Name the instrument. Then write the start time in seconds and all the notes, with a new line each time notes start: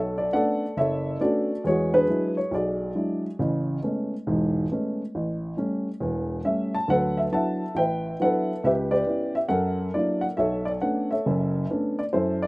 upright piano
Already playing: B1 A4 C#5
0.18 D5
0.32 A3 B3 C#4 D4 A4 D5 F#5
0.77 F#1 A4 C#5 E5
1.20 A3 B3 C#4 D4 F#4 A4 D5
1.64 E2 G#3 F#4 C#5
1.69 G#4
1.94 D4 G#4 B4
2.07 F#3 G#3 D4 E4
2.37 C#5
2.51 B1 F#4 G#4 D5
2.95 F#3 G#3 D4 E4
3.39 A1 C#3
3.83 G#3 A3 B3 C#4
4.27 E1 G#2
4.72 G#3 A3 B3 C#4
5.15 A1
5.57 G3 A3 C#4
6.00 E1 E2
6.44 G3 A3 C#4 E5
6.75 A5
6.88 D2 F#3 A4 B4 F#5
7.17 E5
7.32 F#3 B3 D4 E4 E5 F#5 A5
7.75 A1 B4 E5 G5
8.20 F#3 B3 D4 E4 B4 F#5
8.24 A4
8.64 C#2 G4 B4 E5
8.91 G4 B4 D5
9.07 B3 C#4 E4
9.35 E5
9.48 F#2 A4 A#4 F#5
9.94 F#3 A#3 D4 E4 D5
10.21 F#5
10.37 B1 A4 C#5 E5
10.65 D5
10.81 A3 B3 C#4 D4 F#5
11.11 A4 C#5 E5
11.26 F#1 F#2
11.70 A3 B3 C#4 D4
11.99 D5
12.13 F#2 E4 A4 C5
12.42 D5